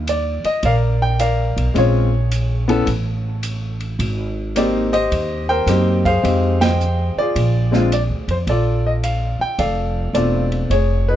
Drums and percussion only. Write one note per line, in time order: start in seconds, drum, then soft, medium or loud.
0.07 hi-hat pedal medium
0.07 ride medium
0.44 ride soft
0.63 kick soft
0.63 ride medium
1.19 hi-hat pedal medium
1.19 ride medium
1.58 ride soft
1.75 kick soft
1.75 ride medium
2.31 hi-hat pedal medium
2.31 ride medium
2.69 ride soft
2.87 kick soft
2.87 ride medium
3.43 hi-hat pedal medium
3.43 ride medium
3.80 ride soft
3.99 kick soft
3.99 ride medium
4.56 hi-hat pedal medium
4.56 ride medium
4.94 ride soft
5.12 kick soft
5.12 ride medium
5.67 snare soft
5.67 hi-hat pedal medium
5.67 ride medium
6.05 kick medium
6.05 ride soft
6.24 kick soft
6.24 ride medium
6.61 snare medium
6.61 ride medium
6.81 hi-hat pedal medium
7.36 kick soft
7.36 ride medium
7.73 snare medium
7.92 hi-hat pedal medium
7.92 ride medium
8.28 ride soft
8.47 kick soft
8.47 ride medium
9.03 hi-hat pedal medium
9.03 ride medium
9.59 kick soft
9.59 ride medium
10.15 hi-hat pedal medium
10.15 ride medium
10.52 ride soft
10.70 kick soft
10.70 ride medium